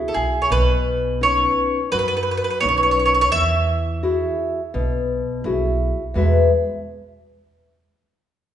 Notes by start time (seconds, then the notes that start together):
Already playing: C#2 E4 F#4 G#4
0.08 A4
0.14 B1 G#4
0.42 C#5
0.50 B1 B2 B4
1.21 B3 C#4 D#4 C#5
1.92 F#2 F#3 B4
1.99 B4
2.08 B4
2.17 B4
2.23 B4
2.31 B4
2.37 B4
2.44 B4
2.50 B4
2.60 B1 B3 C#4 D#4 C#5
2.69 C#5
2.78 C#5
2.83 C#5
2.91 C#5
2.99 C#5
3.06 C#5
3.14 C#5
3.21 C#5
3.32 E2 E3 E5
4.03 E4 F#4 G#4
4.74 B1 B2
5.44 B1 E4 F#4 G#4
6.14 E2 B2 G#3 F#4 B4 E5